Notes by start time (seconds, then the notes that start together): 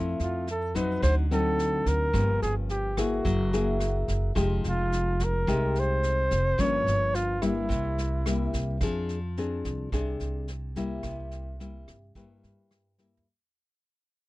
Already playing: F2 F3 A3 C4 E4
0.20 F2 F4, snare
0.47 A4, snare
0.75 F#3 C4 D#4 B4, kick, snare
1.02 D2 D3 C5, kick, cross-stick, snare
1.31 F#3 C4 D#4 A4, snare
1.59 snare
1.86 D2 A#4, kick, snare
2.13 G1 G2 F3 A#3 C#4, kick, cross-stick, snare
2.42 G1 G#4, snare
2.69 G4, snare
2.97 A#3 E4 F#4 G#4, kick, cross-stick, snare
3.25 F#1 F#3, kick, snare
3.53 A#3 E4 G#4, snare
3.80 cross-stick, snare
4.08 F#1, kick, snare
4.35 F1 F3 G#3 D#4 G4, kick, cross-stick, snare
4.64 F1, snare
4.69 F4
4.92 snare
5.20 kick, snare
5.24 A#4
5.47 C2 C3 G#3 D#4 G4, kick, cross-stick, snare
5.75 snare
5.80 C5
6.03 snare
6.31 F1, kick, snare
6.58 G1 G2 F3 A#3 C#4 C#5, kick, cross-stick, snare
6.87 G1, snare
7.14 F4, snare
7.42 G3 A#3 E4, kick, cross-stick, snare
7.69 C2 C3, kick, snare
7.98 snare
8.26 G3 A#3 E4, cross-stick, snare
8.53 C2, kick, snare
8.81 F2 F3 C4 D4 G#4, kick, cross-stick, snare
9.09 snare
9.37 C4 D4 G#4, snare
9.65 C2, kick, snare
9.92 C2 C3 C4 D4 G#4, kick, cross-stick, snare
10.20 C2, snare
10.48 snare
10.76 G3 A#3 E4, kick, snare
11.03 C2 C3, kick, cross-stick, snare
11.31 snare
11.60 G3 A#3 E4, snare
11.87 G2, kick, cross-stick, snare
12.15 G2 G3 A#3 E4, kick, snare
12.44 G2, snare
12.71 cross-stick, snare
12.98 G3 A#3 E4, snare
13.17 floor tom